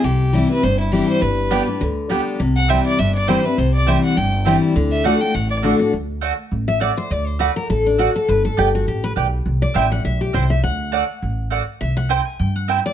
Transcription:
0.04 C2 C3 G4
0.33 E3 G3 C4 E4
0.49 C4 E4 B4
0.63 G1 G2 C5
0.79 E4
0.92 E3 G3 C4 E4 G4
1.08 C5
1.22 G1 G2 B4
1.50 G3 B3 D4 G4 D5 G5
1.67 D4 G4
1.81 D2 D3
2.09 G3 B3 D4 G4 D5 G5
2.40 C2 C3
2.56 F#5
2.68 E3 G3 C4 E4 C5 E5 G5
2.86 D5
2.99 G1 G2 E5
3.15 D5
3.27 E3 G3 C4 E4 C5 G5
3.44 C4 E4 B4
3.58 C2 C3 C5
3.74 D5
3.86 E3 G3 C4 E4 C5 E5 G5
4.04 F#5
4.17 G1 G2 G5
4.45 E3 G3 C4 E4 C5 G5
4.75 D2 D3
4.92 E5
5.04 D3 A3 D4 F#4 D5 F#5
5.21 D4 F#4 G5
5.34 A1 A2 F#5
5.50 D5
5.63 D3 A3 D4 F#4 D5 F#5
5.79 D4 F#4
5.93 D2
6.21 A3 F#4 D5 F#5
6.51 A1
6.68 E5
6.80 A3 F#4 D5 F#5
6.97 C5
7.10 D2 D5
7.27 C5
7.39 A3 F#4 B4 D5 F#5
7.56 A#4
7.69 A1 A4
7.86 D4
7.98 A3 F#4 D5 F#5
8.16 A4
8.28 G1 B4
8.45 A4
8.57 G1 B3 G4 D5 G5
8.75 F#4
8.87 A1 G4
9.04 B4
9.16 B1 B3 G4 D5 G5
9.46 C2
9.62 D5
9.74 A1 C4 E4 C5 E5 G5
9.92 F#5
10.04 B1 E5
10.21 G4
10.33 C2 C4 E4 C5 G5
10.50 E5
10.63 D2 F#5
10.92 A3 F#4 D5 F#5
11.22 A1
11.50 A3 F#4 D5 F#5
11.81 C2 E5
11.97 F#5
12.09 C4 E4 C5 G5
12.26 G#5
12.39 G2 G5
12.56 F#5
12.68 C4 E4 C5 E5 G5
12.86 D5

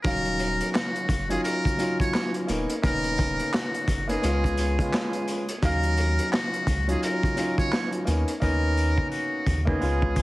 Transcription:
0.04 D#1 F#3 C#4 D#4 A#4 F5, kick, closed hi-hat, sleigh bells
0.25 closed hi-hat
0.39 closed hi-hat, sleigh bells
0.61 closed hi-hat
0.72 F#4, snare, clap, sleigh bells
0.96 closed hi-hat
1.09 F#1, kick, closed hi-hat, sleigh bells
1.29 F#3 C#4 D#4 F4 G#4, closed hi-hat
1.43 A#4, closed hi-hat, sleigh bells
1.65 kick, closed hi-hat
1.78 F#3 C#4 D#4 F4, closed hi-hat, sleigh bells
2.00 C#5, kick, closed hi-hat
2.14 snare, clap, sleigh bells
2.34 closed hi-hat
2.47 D#1 A#3 B3 C#4 D#4, closed hi-hat, sleigh bells
2.70 closed hi-hat
2.82 D#1 A#3 B3 C#4 D#4 A#4, kick, closed hi-hat, sleigh bells
3.04 closed hi-hat
3.18 kick, closed hi-hat, sleigh bells
3.39 closed hi-hat
3.53 F#4, snare, clap, sleigh bells
3.74 closed hi-hat
3.88 F#1, kick, closed hi-hat, sleigh bells
4.07 A#3 B3 C#4 D#4 G#4, closed hi-hat
4.22 C#2 G#3 B3 C#4 F4, closed hi-hat, sleigh bells
4.44 kick, closed hi-hat
4.57 closed hi-hat, sleigh bells
4.78 G#3 B3 C#4 F4, kick, closed hi-hat
4.93 snare, clap, sleigh bells
5.13 closed hi-hat
5.28 closed hi-hat, sleigh bells
5.49 closed hi-hat
5.62 D#2 F#3 C#4 D#4 A#4 F5, kick, closed hi-hat, sleigh bells
5.83 closed hi-hat
5.97 closed hi-hat, sleigh bells
6.19 closed hi-hat
6.32 F#4, snare, clap, sleigh bells
6.54 closed hi-hat
6.67 C#2, kick, closed hi-hat, sleigh bells
6.87 F#3 C#4 D#4 F4 G#4, closed hi-hat
7.03 A#4, closed hi-hat, sleigh bells
7.23 kick, closed hi-hat
7.36 F#3 C#4 D#4 F4, closed hi-hat, sleigh bells
7.58 C#5, kick, closed hi-hat
7.72 snare, clap, sleigh bells
7.93 closed hi-hat
8.05 D#2 A#3 B3 C#4 D#4, closed hi-hat, sleigh bells
8.28 closed hi-hat
8.40 D#2 A#3 B3 C#4 D#4 A#4, kick, sleigh bells
8.77 sleigh bells
8.98 kick
9.11 F#4, sleigh bells
9.46 D#2, kick, sleigh bells
9.65 A#3 B3 C#4 D#4 G#4, kick
9.79 C#2 G#3 B3 C#4 F4, sleigh bells
10.02 kick
10.16 kick, sleigh bells

